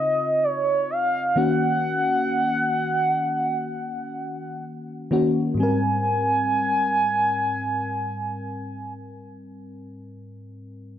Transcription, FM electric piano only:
Already playing: C#3 C4 D#4 F4
1.36 D#3 A#3 C#4 F#4
5.11 D#3 A#3 C#4 F#4
5.54 G#2 G3
5.60 C4 A#4

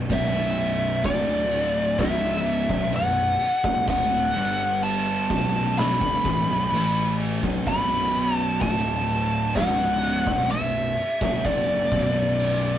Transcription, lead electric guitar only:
0.13 E5
1.06 D5
2.00 E5
2.96 F#5
3.90 F#5
4.83 A5
5.79 B5
7.68 B5
8.37 A5
8.61 A5
9.56 F#5
10.51 E5
11.45 D5

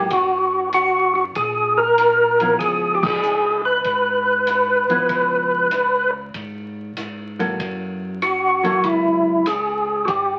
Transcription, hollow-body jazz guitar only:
2.41 F3 B3 E4
4.89 F3 B3 E4
7.39 F#3 A#3 E4 A4
8.64 F#3 A#3 E4 A4

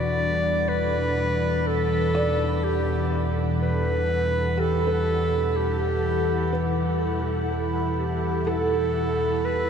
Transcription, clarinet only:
Already playing: D5
0.68 B4
1.67 A4
2.64 G4
3.62 B4
4.60 A4
5.56 G4
7.99 G4
8.48 A4
9.45 B4

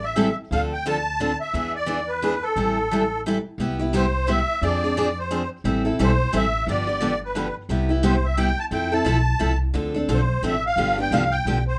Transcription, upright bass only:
Already playing: A1
0.51 D2
1.54 E2
2.56 A1
3.58 C2
4.62 F2
5.64 A1
5.99 B1
6.33 A1
6.67 G1
7.69 C2
8.71 F2
9.05 B1
9.40 C2
9.74 D2
10.08 B1
10.42 A1
10.76 G1
11.11 C2
11.45 B1

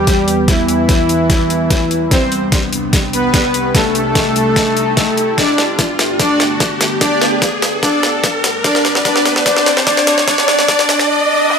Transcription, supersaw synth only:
Already playing: G3 G4
0.48 E3 E4
2.11 C4 C5
3.13 B3 B4
3.75 A3 A4
5.38 D4 D5
6.20 D4 D5
7.01 D4 D5
7.83 D4 D5
8.64 D4 D5
9.05 D4 D5
9.46 D4 D5
9.87 D4 D5
10.28 D4 D5
10.48 D4 D5
10.68 D4 D5
10.89 D4 D5
11.09 D4 D5
11.30 D4 D5
11.50 D4 D5

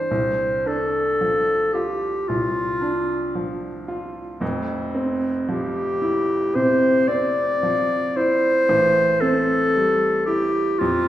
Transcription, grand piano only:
Already playing: E3 C4 D4
0.11 C2
0.66 D4
1.21 F3
1.75 F4
2.29 C2
2.81 D4
3.35 F3
3.88 F4
4.40 F1 F2
4.95 C4
5.49 F3
6.02 E4
6.55 C3
7.09 C4
7.63 F3
8.17 E4
8.69 A1
9.22 C4
9.75 G3
10.27 E4
10.81 F2

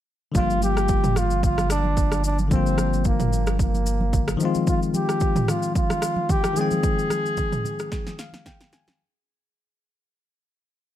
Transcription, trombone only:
0.36 F4
0.63 G4
1.17 F4
1.44 F4
1.71 D4
2.25 D4
2.52 C4
3.06 A#3
3.61 A#3
4.69 F4
4.95 G4
5.49 F4
5.76 F4
6.30 G4
6.57 G#4

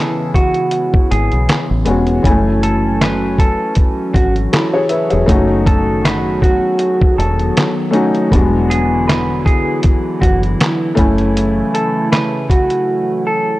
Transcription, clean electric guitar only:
Already playing: A4
0.35 F#4
1.11 G#4
2.63 A4
3.01 B4
3.39 A4
4.15 F#4
5.67 A4
6.05 B4
6.43 F#4
7.18 A4
8.70 G#4
9.08 B4
9.46 G#4
10.21 F#4
11.74 A4
12.12 B4
12.50 F#4
13.27 A4

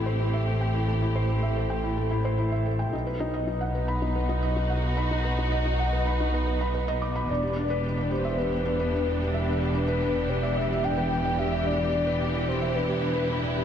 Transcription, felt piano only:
Already playing: E4 A4 C5 E5 G5
0.06 C5
0.20 E4
0.34 E5
0.47 A4
0.61 G5
0.74 E4
0.88 A4
1.02 E4
1.15 C5
1.29 E4
1.43 E5
1.56 A4
1.70 G5
1.83 E4
1.97 A4
2.11 E4
2.25 C5
2.38 E4
2.52 E5
2.66 A4
2.79 G5
2.93 D#4
3.07 B4
3.20 D#4
3.34 D#5
3.47 D#4
3.61 F#5
3.75 B4
3.88 B5
4.02 D#4
4.15 B4
4.29 D#4
4.43 D#5
4.56 D#4
4.70 F#5
4.84 B4
4.97 B5
5.11 D#4
5.25 B4
5.38 D#4
5.52 D#5
5.66 D#4
5.79 F#5
5.93 B4
6.07 B5
6.20 D#4
6.34 B4
6.47 B4
6.61 B5
6.74 B4
6.88 D#5
7.02 D6
7.16 B5
7.29 D4
7.43 G4
7.56 D4
7.70 B4
7.84 D4
7.97 D5
8.11 G4
8.25 E5
8.38 D4
8.52 G4
8.65 D4
8.79 B4
8.93 D4
9.07 D5
9.20 G4
9.34 E5
9.47 D4
9.61 G4
9.74 D4
9.88 B4
10.02 D4
10.15 D5
10.29 G4
10.43 E5
10.57 D4
10.70 G4
10.84 D4
10.97 B4
11.11 D4
11.25 D5
11.38 G4
11.52 E5
11.66 D4
11.80 G4
11.93 D4
12.07 B4
12.20 D4
12.34 D5
12.48 G4
12.61 E5
12.75 D4
12.88 G4
13.02 D4
13.16 B4
13.29 D4
13.43 D5
13.57 G4

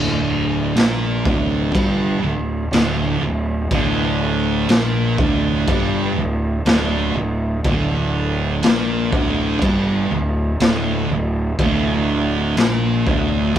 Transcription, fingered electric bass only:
Already playing: D1
0.76 A#1
1.25 D1
1.75 G1
2.22 D1
2.71 D1
3.21 D1
3.71 D1
4.69 A#1
5.19 D1
5.68 G1
6.16 D1
6.65 D1
7.14 D1
7.65 D1
8.62 A#1
9.12 D1
9.62 G1
10.10 D1
10.61 D1
11.10 D1
11.58 D1
12.56 A#1
13.07 D1
13.56 F1

